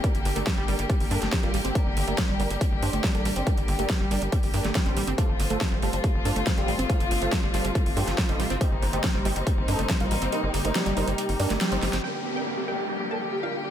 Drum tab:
CC |----------------|----------------|----------------|----------------|
HH |xxoxx-oxxooxxxox|x-oxx-oxx-oxxxox|xxoxx-oxxooxxxox|x-oxx-oxx-oxxxox|
SD |----o------oo---|----o-------o---|----o------oo---|----o-------o---|
BD |o---o---o---o---|o---o---o---o---|o---o---o---o---|o---o---o---o---|

CC |----------------|----------------|----------------|x---------------|
HH |xxoxx-oxxooxxxox|x-oxx-oxx-oxxxox|x-oxxxoxxooxxxox|----------------|
SD |----o------oo---|----o-------o---|----o------oo-oo|----------------|
BD |o---o---o---o---|o---o---o---o---|----------------|----------------|